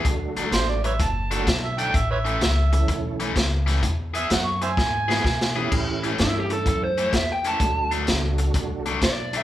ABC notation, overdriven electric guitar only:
X:1
M:4/4
L:1/8
Q:"Swing" 1/4=127
K:A
V:1 name="Overdriven electric guitar"
z [D,F,A,D] z3 [D,F,A,D] z [D,F,A,D] | z [A,,E,A,C] z3 [A,,E,A,C] z [A,,E,A,C] | z [E,B,EG] z3 [E,B,EG] z [E,B,EG] | z [A,,E,A,C] z3 [A,,E,A,C] z [A,,E,A,C] |
z [D,F,A,D] z3 [D,F,A,D] z [D,F,A,D] |]